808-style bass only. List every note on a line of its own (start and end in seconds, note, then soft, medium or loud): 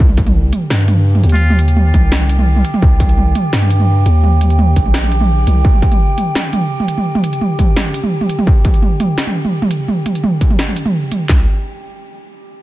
0.00 0.52 C2 loud
0.71 1.22 G2 medium
1.23 1.93 D#2 loud
1.94 2.63 C2 loud
2.82 3.34 C2 loud
3.53 4.04 G2 medium
4.06 4.75 D#2 loud
4.76 5.46 A#1 medium
5.47 5.63 C2 medium
11.29 11.46 C2 medium